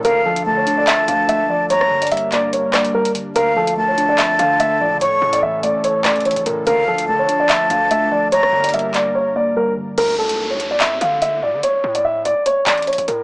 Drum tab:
CC |--------------------------------|--------------------------------|--------------------------------|--------------------------------|
HH |x-----x-----x---x---x---x-------|x-----xxxx--x---x---x-x---x-x---|x-----x-----x---x---x---x-------|x-----x-----x---x---x-xxxxx-x---|
CP |----------------x---------------|------------x-------x-----------|----------------x---------------|--------------------x-----------|
SD |--------------------------------|--r-----------------r-----------|--------------------------------|--------------------r-----------|

CC |--------------------------------|--------------------------------|x-------------------------------|--------------------------------|
HH |x-----x-----x---x---x---x-------|x-----xxxx--x-------------------|x-----x-----x---x---x---x-------|x-----x-----x---x---x-xxxxx-x---|
CP |----------------x---------------|------------x-------------------|----------------x---------------|--------------------x-----------|
SD |--------------------------------|--r-----------------------------|--------------------------------|--------------------------------|